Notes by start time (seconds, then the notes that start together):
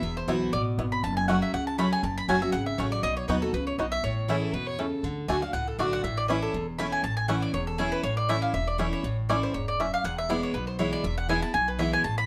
Already playing: E5
0.02 E1 E2
0.17 C5
0.28 B1 E3 B3 E4 F#4
0.53 A1 B2 D5
0.78 G#1 E2 B3 E4
0.92 B5
1.03 F#1 F#2 A5
1.17 G#5
1.28 F#3 A3 C#4 F#4 F#5
1.42 E5
1.53 C#2 C#3 F#5
1.67 A5
1.78 F#3 A3 C#4 F#4 B5
1.93 G#5
2.03 F#1 F#2 A5
2.18 B5
2.28 F#1 F#3 A3 C#4 F#4 G#5
2.42 C#4 F#4 E5
2.52 G#1 C#3 F#5
2.66 E5
2.78 A1 F#3 A3 C#4 F#4 C#5
2.92 D5
3.03 B1 B2 D#5
3.17 C#5
3.28 D#2 F#3 B3 D#4 F#4 B4
3.42 D#4 F#4 A4
3.53 C#2 C#3 B4
3.67 C#5
3.78 B1 B2 B3 D#4 F#4 D#5
3.92 E5
4.03 A1 A2 C#5
4.28 E3 A3 C#4 E4 G#4
4.42 A4
4.53 E2 B2 B4
4.67 C#5
4.79 C#3 A3 C#4 E4 A4
5.03 D2 D3
5.28 D2 D3 A3 D4 F#4 G#5
5.42 D4 F#4 F5
5.53 C#2 A2 F#5
5.68 A4
5.78 B1 D3 A3 D4 F#4 D5
5.93 F#5
6.04 A1 A2 E5
6.17 D5
6.28 E3 A3 C#4 E4 B4
6.42 A4
6.54 E1 E2
6.79 E3 A3 C#4 E4 B5
6.92 G#5
7.03 A1 A2 A5
7.17 G#5
7.28 E3 A3 C#4 E4 F#5
7.42 D5
7.53 E1 E2 C#5
7.67 A4
7.78 E3 A3 C#4 E4 G#4
7.92 B4
8.03 A1 A2 C#5
8.17 D5
8.29 E3 A3 C#4 E4 E5
8.42 F5
8.54 E1 E2 E5
8.67 D5
8.78 E3 A3 C#4 E4 C#5
8.93 C#5
9.03 A1 A2
9.29 E3 A3 C#4 E4 D5
9.43 C5
9.54 E1 G#2 C#5
9.68 D5
9.80 F#2 A3 C#4 E4 E5
9.94 F5
10.04 E1 E2 F#5
10.18 E5
10.29 E3 G#3 B3 E4 D5
10.43 C#5
10.54 B1 B2 B4
10.67 C5
10.79 E3 G#3 B3 E4 C#5
10.93 D5
11.04 E1 E2 E5
11.18 F#5
11.29 E3 G#3 B3 E4 G#5
11.42 B3 E4 A5
11.54 B1 B2 G#5
11.68 B4
11.79 E3 G#3 B3 E4 E5
11.93 G#5
12.04 A1 A2 A5
12.18 B5